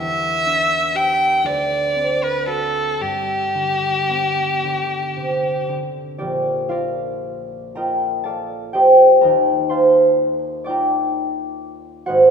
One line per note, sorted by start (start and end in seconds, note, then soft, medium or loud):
0.00 1.48 E2 soft
0.00 0.45 D4 soft
0.00 0.93 G4 soft
0.00 0.94 B4 soft
0.00 0.98 E5 medium
0.00 2.01 E5 soft
0.46 4.36 D4 soft
0.95 1.48 G4 soft
0.95 2.46 B4 soft
0.95 1.47 G5 medium
1.44 3.04 D2 soft
1.44 2.25 D5 medium
1.95 3.04 C4 soft
2.23 2.48 B4 medium
2.47 3.04 F#4 soft
2.47 3.03 A4 medium
2.47 6.25 B4 soft
3.01 6.25 G2 soft
3.01 5.70 G4 medium
3.54 4.62 D3 soft
4.09 6.24 B3 soft
4.64 5.67 D3 soft
5.17 6.06 C3 soft
5.69 6.24 D3 soft
6.18 9.28 A#1 soft
6.18 8.73 G4 soft
6.18 6.69 A#4 soft
6.18 6.69 D5 medium
6.69 7.76 F4 soft
6.69 7.75 A#4 soft
6.69 8.24 D5 soft
6.69 8.24 F5 medium
7.75 10.68 F4 soft
7.75 9.21 A#4 soft
7.75 8.73 D#5 soft
7.75 8.72 G5 soft
7.75 9.20 A#5 medium
8.24 9.27 A4 soft
8.24 10.64 D5 soft
8.24 9.70 F5 soft
8.24 9.26 A5 medium
8.73 12.12 G4 soft
8.73 9.28 C5 soft
8.73 9.22 D#5 soft
8.73 9.22 G5 medium
9.21 12.13 D#2 soft
9.21 12.30 A#4 soft
9.21 12.06 D#5 soft
9.21 10.65 G5 soft
9.21 10.66 A#5 medium
9.69 12.06 C5 soft
9.69 12.12 F5 soft
9.69 12.12 A5 soft
9.69 11.32 C6 medium
10.64 12.30 D#4 soft
10.64 12.12 D5 soft
10.64 12.12 G5 soft
10.64 12.12 D6 medium
10.69 12.13 F4 soft
10.69 12.30 A#5 soft
12.06 12.30 G#1 soft
12.06 12.30 F#4 soft
12.06 12.30 C5 soft
12.06 12.30 D#5 soft
12.06 12.30 F#5 medium